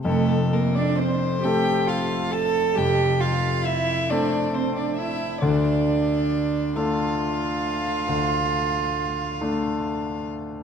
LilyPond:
<<
  \new Staff \with { instrumentName = "Violin" } { \time 12/8 \key f \major \tempo 4. = 45 a'8 bes'16 d''16 c''8 g''8 f''8 a''8 g''8 f''8 e''8 d''8 c''16 d''16 e''8 | d''4. f''1 r8 | }
  \new Staff \with { instrumentName = "Cello" } { \time 12/8 \key f \major a8 bes16 d'16 c'8 g'8 f'8 a'8 g'8 f'8 e'8 d'8 c'16 d'16 e'8 | d'4. f'1 r8 | }
  \new Staff \with { instrumentName = "Grand piano" } { \time 12/8 \key f \major <f,, f,>4. <a c' a'>4. <f,, f,>4. <a c' a'>4. | <d, d>4. <a d' a'>4. <d, d>4. <a d' a'>4. | }
>>